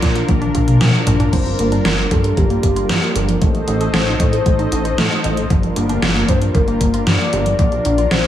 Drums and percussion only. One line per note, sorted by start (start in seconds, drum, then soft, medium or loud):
0.02 kick medium
0.02 snare soft
0.02 closed hi-hat medium
0.15 closed hi-hat medium
0.29 kick loud
0.29 closed hi-hat soft
0.29 high tom medium
0.42 closed hi-hat soft
0.42 high tom medium
0.55 kick medium
0.55 closed hi-hat medium
0.68 closed hi-hat medium
0.68 mid tom medium
0.81 snare loud
0.81 closed hi-hat medium
0.81 mid tom medium
0.94 closed hi-hat soft
1.07 closed hi-hat medium
1.07 mid tom loud
1.20 closed hi-hat medium
1.20 mid tom medium
1.33 kick loud
1.33 closed hi-hat medium
1.33 crash medium
1.46 closed hi-hat soft
1.59 closed hi-hat medium
1.72 closed hi-hat soft
1.85 snare loud
1.85 closed hi-hat medium
1.98 closed hi-hat soft
2.11 kick loud
2.11 closed hi-hat loud
2.24 closed hi-hat medium
2.37 kick loud
2.37 closed hi-hat medium
2.50 closed hi-hat soft
2.63 kick medium
2.63 closed hi-hat medium
2.76 closed hi-hat medium
2.89 snare loud
2.89 closed hi-hat medium
3.03 closed hi-hat soft
3.16 closed hi-hat loud
3.29 closed hi-hat medium
3.42 kick loud
3.42 closed hi-hat medium
3.55 closed hi-hat soft
3.68 closed hi-hat medium
3.81 closed hi-hat medium
3.94 snare loud
3.94 closed hi-hat medium
4.07 closed hi-hat soft
4.20 kick loud
4.20 closed hi-hat medium
4.33 closed hi-hat medium
4.46 kick loud
4.46 closed hi-hat medium
4.59 closed hi-hat soft
4.72 closed hi-hat medium
4.85 closed hi-hat medium
4.98 snare loud
4.98 closed hi-hat medium
5.11 closed hi-hat soft
5.24 closed hi-hat medium
5.37 closed hi-hat medium
5.50 kick loud
5.50 closed hi-hat medium
5.63 closed hi-hat soft
5.76 closed hi-hat medium
5.89 closed hi-hat soft
6.02 snare loud
6.02 closed hi-hat soft
6.16 closed hi-hat soft
6.29 kick loud
6.29 closed hi-hat loud
6.42 closed hi-hat medium
6.55 kick loud
6.55 closed hi-hat medium
6.68 closed hi-hat soft
6.81 kick medium
6.81 closed hi-hat medium
6.94 closed hi-hat medium
7.07 snare loud
7.07 closed hi-hat medium
7.20 closed hi-hat soft
7.33 closed hi-hat medium
7.46 closed hi-hat medium
7.59 kick loud
7.59 closed hi-hat medium
7.72 closed hi-hat soft
7.85 closed hi-hat medium
7.98 closed hi-hat soft
8.11 snare loud
8.11 closed hi-hat medium